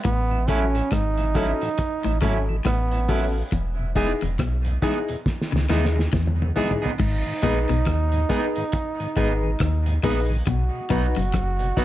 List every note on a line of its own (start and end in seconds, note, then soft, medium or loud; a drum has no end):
0.05 0.82 A1 loud
0.05 0.31 A2 medium
0.05 0.50 B3 loud
0.05 kick loud
0.05 closed hi-hat medium
0.31 0.39 A2 medium
0.31 0.39 E3 medium
0.48 0.63 F#3 medium
0.48 0.60 F#3 medium
0.48 0.60 A3 medium
0.48 0.74 C#4 medium
0.48 0.93 C#4 medium
0.48 0.63 C#4 medium
0.48 0.60 C#4 medium
0.48 0.64 E4 medium
0.48 0.75 F#4 medium
0.48 0.75 A4 medium
0.48 kick medium
0.48 closed hi-hat medium
0.75 0.82 A2 medium
0.75 0.82 E3 medium
0.75 closed hi-hat soft
0.92 1.54 G#1 medium
0.92 1.18 G#2 medium
0.92 2.18 D#4 loud
0.92 kick loud
0.92 cross-stick loud
0.92 closed hi-hat medium
1.17 1.25 A2 medium
1.17 1.25 E3 medium
1.17 closed hi-hat soft
1.35 1.50 F#3 medium
1.35 1.47 F#3 medium
1.35 1.47 A3 medium
1.35 1.61 C#4 medium
1.35 1.50 C#4 medium
1.35 1.47 C#4 medium
1.35 1.50 E4 medium
1.35 1.60 F#4 medium
1.35 1.60 A4 medium
1.35 kick medium
1.35 closed hi-hat medium
1.61 1.69 A2 medium
1.61 1.69 E3 medium
1.61 1.68 F#4 soft
1.61 1.68 A4 soft
1.61 closed hi-hat medium
1.78 kick loud
1.78 closed hi-hat medium
2.04 2.20 A1 medium
2.04 2.15 A2 medium
2.04 2.12 A2 medium
2.04 2.13 E3 medium
2.04 muted clean electric guitar stroke soft
2.04 closed hi-hat soft
2.21 2.61 G#1 medium
2.21 2.48 G#2 medium
2.21 2.36 F#3 medium
2.21 2.34 F#3 medium
2.21 2.34 A3 medium
2.21 2.48 C#4 medium
2.21 2.43 C#4 medium
2.21 2.37 C#4 medium
2.21 2.34 C#4 medium
2.21 2.37 E4 medium
2.21 2.47 F#4 medium
2.21 2.47 A4 medium
2.21 kick medium
2.21 cross-stick medium
2.21 closed hi-hat medium
2.48 2.56 A2 medium
2.48 2.56 E3 medium
2.48 2.55 F#4 soft
2.48 2.55 A4 soft
2.65 3.43 A1 medium
2.65 2.91 A2 medium
2.65 3.31 B3 medium
2.65 kick loud
2.65 cross-stick loud
2.65 closed hi-hat medium
2.91 3.00 A2 medium
2.91 3.00 E3 medium
2.91 closed hi-hat medium
3.08 3.24 F#3 medium
3.08 3.20 F#3 medium
3.08 3.21 A3 medium
3.08 3.35 C#4 medium
3.08 3.24 C#4 medium
3.08 3.21 C#4 medium
3.08 3.24 E4 medium
3.08 3.34 F#4 medium
3.08 3.34 A4 loud
3.08 kick medium
3.08 open hi-hat medium
3.35 3.42 F#4 soft
3.35 3.42 A4 soft
3.52 4.14 E1 loud
3.52 3.78 E2 medium
3.52 kick loud
3.52 closed hi-hat medium
3.79 3.86 E2 medium
3.79 3.86 B2 soft
3.95 4.08 E3 medium
3.95 4.08 G#3 medium
3.95 4.11 B3 medium
3.95 4.22 D#4 medium
3.95 4.11 D#4 medium
3.95 4.08 D#4 medium
3.95 4.22 E4 medium
3.95 4.22 G#4 loud
3.95 4.11 G#4 medium
3.95 kick medium
3.95 closed hi-hat medium
4.22 4.38 E1 medium
4.22 4.33 E2 medium
4.22 4.30 E2 medium
4.22 4.30 B2 medium
4.22 closed hi-hat soft
4.39 4.78 B1 medium
4.39 4.65 B2 medium
4.39 kick medium
4.39 cross-stick loud
4.39 closed hi-hat medium
4.65 4.73 E2 medium
4.65 4.73 B2 medium
4.65 closed hi-hat soft
4.82 4.94 E3 medium
4.82 4.94 G#3 medium
4.82 4.97 B3 medium
4.82 5.09 D#4 medium
4.82 4.98 D#4 medium
4.82 4.94 D#4 medium
4.82 5.08 E4 medium
4.82 5.08 G#4 medium
4.82 4.98 G#4 medium
4.82 kick medium
4.82 closed hi-hat medium
5.08 5.16 E2 medium
5.08 5.17 B2 medium
5.08 5.16 E4 soft
5.08 5.16 G#4 soft
5.08 closed hi-hat medium
5.26 kick loud
5.26 snare soft
5.42 snare soft
5.52 5.68 C#2 medium
5.52 5.60 E2 medium
5.52 5.60 B2 medium
5.52 5.63 C#3 medium
5.52 snare medium
5.69 6.08 D#2 medium
5.69 5.96 D#3 medium
5.69 5.81 E3 medium
5.69 5.81 G#3 medium
5.69 5.84 B3 medium
5.69 5.96 D#4 medium
5.69 5.85 D#4 medium
5.69 5.81 D#4 medium
5.69 5.95 E4 medium
5.69 5.95 G#4 medium
5.69 5.85 G#4 medium
5.69 snare medium
5.85 snare medium
5.96 6.03 E2 medium
5.96 6.03 B2 medium
5.96 6.03 E4 soft
5.96 6.03 G#4 soft
5.96 muted clean electric guitar stroke soft
5.96 snare medium
6.13 6.52 E2 medium
6.13 6.39 E3 medium
6.13 kick loud
6.13 snare medium
6.27 mid tom medium
6.40 6.47 E2 medium
6.40 6.47 B2 medium
6.40 mid tom medium
6.56 6.68 E3 medium
6.56 6.68 G#3 medium
6.56 6.71 B3 medium
6.56 6.82 D#4 medium
6.56 6.71 D#4 medium
6.56 6.68 D#4 medium
6.56 6.83 E4 medium
6.56 6.83 G#4 medium
6.56 6.72 G#4 medium
6.56 floor tom medium
6.71 floor tom medium
6.82 6.91 B3 soft
6.82 6.90 D#4 medium
6.82 6.90 G#4 medium
6.82 floor tom medium
7.00 7.23 G#1 loud
7.00 7.15 G#2 medium
7.00 10.00 D#4 medium
7.00 kick loud
7.00 crash loud
7.26 7.34 G#2 medium
7.26 7.34 D#3 medium
7.42 7.66 A#1 medium
7.42 7.59 A#2 medium
7.42 7.55 G#3 medium
7.42 7.58 B3 medium
7.42 7.55 B3 medium
7.42 7.69 D#4 medium
7.42 7.58 D#4 medium
7.42 7.55 D#4 medium
7.42 7.69 G#4 medium
7.42 7.58 G#4 medium
7.42 7.70 B4 medium
7.42 kick medium
7.42 closed hi-hat medium
7.69 7.85 B1 medium
7.69 7.77 G#2 medium
7.69 7.80 B2 medium
7.69 7.77 D#3 medium
7.69 closed hi-hat soft
7.86 8.25 D#2 medium
7.86 8.13 D#3 medium
7.86 kick loud
7.86 cross-stick loud
7.86 closed hi-hat medium
8.12 8.20 G#2 medium
8.12 8.20 D#3 medium
8.12 closed hi-hat medium
8.29 8.41 G#3 medium
8.29 8.44 B3 medium
8.29 8.41 B3 medium
8.29 8.56 D#4 medium
8.29 8.45 D#4 loud
8.29 8.42 D#4 medium
8.29 8.55 G#4 medium
8.29 8.45 G#4 medium
8.29 8.55 B4 medium
8.29 kick loud
8.29 closed hi-hat medium
8.56 8.64 G#2 medium
8.56 8.64 D#3 medium
8.56 8.63 G#4 soft
8.56 8.63 B4 soft
8.56 closed hi-hat medium
8.72 kick loud
8.72 closed hi-hat medium
9.00 9.07 G#2 medium
9.00 9.07 D#3 medium
9.00 closed hi-hat soft
9.16 9.55 G#1 medium
9.16 9.43 G#2 medium
9.16 9.28 G#3 medium
9.16 9.32 B3 medium
9.16 9.29 B3 medium
9.16 9.43 D#4 medium
9.16 9.32 D#4 medium
9.16 9.29 D#4 medium
9.16 9.42 G#4 medium
9.16 9.32 G#4 medium
9.16 9.42 B4 medium
9.16 kick medium
9.16 closed hi-hat medium
9.43 9.51 G#2 medium
9.43 9.51 D#3 medium
9.43 9.50 G#4 soft
9.43 9.50 B4 soft
9.60 9.99 D#2 loud
9.60 9.86 D#3 medium
9.60 kick loud
9.60 cross-stick loud
9.60 closed hi-hat medium
9.86 9.94 G#2 medium
9.86 9.94 D#3 medium
9.86 closed hi-hat medium
10.03 10.42 A#1 medium
10.03 10.30 A#2 medium
10.03 10.15 G#3 medium
10.03 10.18 B3 medium
10.03 10.15 B3 medium
10.03 10.30 D#4 medium
10.03 10.19 D#4 medium
10.03 10.15 D#4 medium
10.03 10.30 G#4 medium
10.03 10.19 G#4 medium
10.03 10.30 B4 loud
10.03 kick medium
10.03 open hi-hat medium
10.30 10.37 G#2 medium
10.30 10.37 D#3 medium
10.47 10.70 B1 medium
10.47 10.63 B2 medium
10.47 11.85 F#4 medium
10.47 kick loud
10.47 closed hi-hat medium
10.73 10.81 B2 medium
10.90 11.14 B1 medium
10.90 11.06 B2 medium
10.90 11.05 F#3 medium
10.90 11.02 F#3 medium
10.90 11.06 B3 medium
10.90 11.02 B3 medium
10.90 11.16 D#4 medium
10.90 11.02 D#4 medium
10.90 11.06 D#4 medium
10.90 11.17 F#4 medium
10.90 11.17 B4 loud
10.90 kick medium
10.90 closed hi-hat medium
11.16 11.32 F#1 medium
11.16 11.27 F#2 medium
11.16 11.25 B2 medium
11.16 closed hi-hat medium
11.34 11.72 F#1 loud
11.34 11.60 F#2 medium
11.34 kick loud
11.34 cross-stick loud
11.34 closed hi-hat medium
11.59 11.68 B2 medium
11.59 closed hi-hat medium
11.77 11.85 F#3 medium
11.77 11.85 B3 medium
11.77 11.85 D#4 medium
11.77 11.85 F#4 medium
11.77 11.85 B4 loud
11.77 kick medium
11.77 closed hi-hat medium